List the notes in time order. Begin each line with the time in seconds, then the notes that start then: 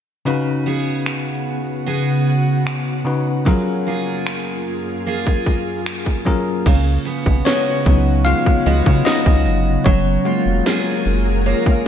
0.25 C#3 B3 C#4 D#4 F#4 B4
0.66 B3 F#4 G#4
1.06 finger snap
1.86 B3 F#4 G#4
2.67 finger snap
3.05 C#3 C#4 D#4 F#4 B4
3.45 F#2 F#3 A#3 C#4 F4 G#4 A#4, kick
3.87 A#3 F4 G#4
4.27 finger snap
5.06 A#3 F4 G#4
5.27 kick
5.46 kick
5.86 finger snap
6.06 kick
6.25 F#3 C#4 F4 G#4 A#4, kick
6.66 C#2 C#3 F#3 B3, kick, closed hi-hat, crash
7.06 B3, closed hi-hat
7.26 B1, kick
7.45 G#3 B3 C#4 F#4 C#5, snare, closed hi-hat
7.85 C#2 F#3 B3 D#4, kick, closed hi-hat
8.25 G#3 F4 F5, closed hi-hat
8.46 kick
8.66 C#2 G#3 B3 F#4 D#5, closed hi-hat
8.86 C#3, kick
9.05 D#4 F#4 D#5, snare, closed hi-hat
9.26 C#2, kick
9.46 G1, open hi-hat
9.84 F#1 F#3 C#4 F4 G#4 A#4 C#5, kick, closed hi-hat
10.25 G#3 A#3 F4, closed hi-hat
10.46 F1
10.66 A#3 F4 G#4, snare, closed hi-hat
11.05 F#1, closed hi-hat
11.46 A#3 C#5, closed hi-hat
11.66 kick
11.71 F5